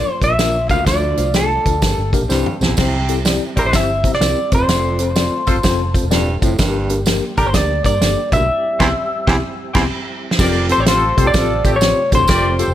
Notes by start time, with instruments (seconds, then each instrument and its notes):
Already playing: tonewheel organ F3 A#3 D4 F4, clean electric guitar D5
0.06 muted fingered electric bass stroke
0.21 fingered electric bass A#1, tine electric piano A#3 D4 F4 A#4, clean electric guitar E5, kick, closed hi-hat, tambourine
0.39 tine electric piano A#3 D4 F4 A#4, snare, closed hi-hat, tambourine
0.69 fingered electric bass C#2, baritone saxophone D2, tine electric piano A#3 D4 F4 A#4, clean electric guitar F5, kick, closed hi-hat, tambourine
0.86 fingered electric bass D2, baritone saxophone D2, tine electric piano A3 D4 F4 A4, tonewheel organ A3 F4, clean electric guitar D5, kick, snare, closed hi-hat, tambourine
1.17 fingered electric bass C2, tine electric piano A3 D4 F4 C5, closed hi-hat, tambourine
1.34 tine electric piano A3 D4 F4 A4, clean electric guitar A4, snare, closed hi-hat, tambourine
1.65 fingered electric bass D2, tine electric piano A3 D4 F4 A4, kick, closed hi-hat, tambourine
1.81 fingered electric bass G1, tonewheel organ G3 A#3 G4, tine electric piano A#3 D4 G4 A#4, kick, snare, closed hi-hat, tambourine
1.98 fingered electric bass G1
2.13 tine electric piano A#3 D4 G4 A#4, kick, closed hi-hat, tambourine
2.22 fingered electric bass A#1
2.29 fingered electric bass C2, baritone saxophone G2, tine electric piano C4 E4 G4 C5, tonewheel organ C4 E4, snare, tambourine
2.46 mid tom
2.61 fingered electric bass C2, baritone saxophone E2, tine electric piano C4 E4 G4 C5, snare, tambourine
2.69 fingered electric bass A#1
2.77 fingered electric bass C2, baritone saxophone C3, tonewheel organ G3 C4 E4 G4, tine electric piano C4 E4 G4 C5, kick, snare, crash, tambourine
3.09 tine electric piano C4 E4 G4 A4, closed hi-hat, tambourine
3.25 tine electric piano C4 E4 G4 D5, snare, closed hi-hat, tambourine
3.56 fingered electric bass A#1, tine electric piano C4 E4 G4 D5, horn section E4 G4 C5, clean electric guitar A#4, kick, closed hi-hat, tambourine
3.65 fingered electric bass A1, clean electric guitar C5
3.73 fingered electric bass G1, tine electric piano C4 E4 G4 C5, clean electric guitar E5, kick, snare, closed hi-hat, tambourine
4.04 fingered electric bass C3, tine electric piano C4 E4 G4 C5, kick, closed hi-hat, tambourine
4.13 clean electric guitar D5, snare
4.20 fingered electric bass C2, tine electric piano C4 E4 G4 A#4, snare, closed hi-hat, tambourine
4.52 fingered electric bass F1, baritone saxophone F2, tonewheel organ A3 F4 A4, tine electric piano C4 F4 G#4 C5, clean electric guitar C5, kick, closed hi-hat, tambourine
4.57 fingered electric bass E1, tine electric piano A4
4.68 fingered electric bass F1, baritone saxophone F2, snare, closed hi-hat, tambourine
4.99 tine electric piano C4 F4 A4 C5, closed hi-hat, tambourine
5.16 tine electric piano C4 F4 A4 D5, snare, closed hi-hat, tambourine
5.47 fingered electric bass F1, tine electric piano C4 F4 A4 C5, horn section F4 A4 C5, kick, closed hi-hat, tambourine
5.55 fingered electric bass G1
5.63 fingered electric bass F1, tine electric piano C4 F4 A4 C5, kick, snare, closed hi-hat, tambourine
5.94 tine electric piano C4 F4 A4 C5, kick, closed hi-hat, tambourine
6.03 fingered electric bass E1
6.11 baritone saxophone G2, tine electric piano C4 F4 A4 D5, snare, closed hi-hat, tambourine
6.42 fingered electric bass F#1, baritone saxophone A2, tine electric piano C4 F4 A4 C5, kick, closed hi-hat, tambourine
6.58 fingered electric bass G1, baritone saxophone G2, tonewheel organ G3 A#3 D4 G4, tine electric piano A#3 D4 G4 A#4, kick, snare, closed hi-hat, tambourine
6.90 tine electric piano A#3 D4 G4 A#4, closed hi-hat, tambourine
7.06 tine electric piano A#3 D4 G4 A#4, snare, closed hi-hat, tambourine
7.37 fingered electric bass A1, tine electric piano A#3 D4 G4 A4, horn section D4 G4 A#4, clean electric guitar A#4, kick, closed hi-hat, tambourine
7.45 fingered electric bass G1, clean electric guitar C5
7.53 fingered electric bass D2, tine electric piano A#3 D4 G4 A#4, clean electric guitar D5, kick, snare, closed hi-hat, tambourine
7.84 fingered electric bass G2, tine electric piano A#3 D4 G4 A#4, clean electric guitar D5, kick, closed hi-hat, tambourine
8.01 fingered electric bass G1, tine electric piano A#3 D4 G4 A4, snare, closed hi-hat, tambourine
8.32 fingered electric bass A#1, baritone saxophone D2, tine electric piano A#3 D4 G4 A#4, clean electric guitar E5, kick, closed hi-hat, tambourine
8.40 fingered electric bass B1
8.49 tonewheel organ C4 E4
8.80 fingered electric bass C2, baritone saxophone E2, tine electric piano C4 E4 G4, horn section E4 G4 C5, kick, snare, crash
9.27 fingered electric bass C2, baritone saxophone E2, tine electric piano C4 E4 G4, horn section E4 G4 C5, kick, snare
9.74 fingered electric bass C2, baritone saxophone E2, tine electric piano C4 E4 G4, horn section E4 G4 C5, kick, snare, crash
10.31 snare
10.38 fingered electric bass F1, baritone saxophone F2, tonewheel organ C3 A3 F4 G4, tine electric piano C4 F4 G4 A4, horn section G4 A#4 D5, kick, snare, crash, tambourine
10.69 tine electric piano C4 F4 G4 A4, horn section G4 A4 C5, clean electric guitar C5, closed hi-hat, tambourine
10.78 fingered electric bass A1, clean electric guitar C#5
10.86 tine electric piano C4 F4 G4 C5, horn section C4 F4 A4, clean electric guitar C5, snare, closed hi-hat, tambourine
11.17 fingered electric bass C2, tine electric piano C4 F4 G4 A4, horn section G4 A4 C5, kick, closed hi-hat, tambourine
11.27 clean electric guitar D5
11.34 fingered electric bass A1, tine electric piano C4 F4 G4 A4, horn section C4 F4 A4, kick, snare, closed hi-hat, tambourine
11.64 fingered electric bass A1, horn section A3 C4 G4, tine electric piano C4 F4 G4 A4, kick, closed hi-hat, tambourine
11.76 clean electric guitar C#5
11.81 tine electric piano C4 F4 G4 C5, snare, closed hi-hat, tambourine
12.12 fingered electric bass A1, baritone saxophone D2, tine electric piano C4 F4 G4 A4, clean electric guitar C5, kick, closed hi-hat, tambourine
12.21 fingered electric bass E1
12.27 fingered electric bass F1, baritone saxophone F2, tine electric piano C4 F4 G4 A4, horn section G4 A#4 D5, kick, snare, closed hi-hat, tambourine
12.59 tine electric piano C4 F4 G4 A4, horn section G4 A4 C5, closed hi-hat, tambourine
12.68 fingered electric bass F1